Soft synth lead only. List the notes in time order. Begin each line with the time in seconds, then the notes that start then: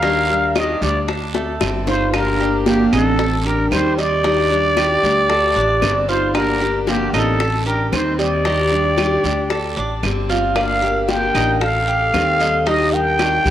1.87 D#4
2.13 D4
2.66 A#3
2.92 C4
3.45 D4
3.70 D#4
3.98 G4
6.08 D#4
6.35 D4
6.87 A#3
7.13 C4
7.66 D4
7.92 D#4
8.19 G4
10.55 A#4
11.09 A#4
11.62 A4
12.66 G4
12.93 A#4